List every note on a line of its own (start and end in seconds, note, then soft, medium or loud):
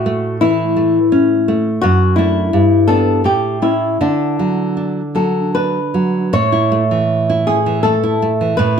0.00 1.79 A2 medium
0.00 0.36 F#4 medium
0.06 0.62 A3 soft
0.41 0.98 E3 soft
0.41 1.79 E4 medium
0.77 1.33 A3 soft
1.12 1.69 C#4 soft
1.48 1.83 A3 soft
1.81 2.50 F#2 medium
1.81 2.14 F#4 medium
2.16 2.49 A3 soft
2.16 2.49 D4 soft
2.16 2.83 E4 medium
2.53 3.23 G2 medium
2.88 3.21 B3 soft
2.88 3.21 D4 soft
2.88 3.22 A4 medium
3.24 3.97 A2 soft
3.24 3.60 G4 medium
3.62 3.96 A3 soft
3.62 3.96 C#4 soft
3.62 3.98 E4 medium
4.01 6.29 D3 soft
4.01 5.12 D4 soft
4.39 5.00 F#3 soft
4.77 5.39 D4 soft
5.15 5.78 F#3 soft
5.15 5.52 A4 soft
5.55 6.17 D4 soft
5.55 6.28 B4 medium
5.94 6.32 F#3 soft
6.33 8.55 A2 medium
6.33 7.44 C#5 medium
6.52 6.83 E4 soft
6.72 7.02 A3 soft
6.91 7.51 E3 soft
7.30 7.59 E4 soft
7.47 7.77 A3 soft
7.47 7.81 G#4 medium
7.66 7.95 E3 soft
7.83 8.14 A3 soft
7.83 8.54 A4 medium
8.03 8.33 E4 soft
8.22 8.51 A3 soft
8.41 8.59 E3 soft
8.57 8.80 A2 medium
8.57 8.80 B4 medium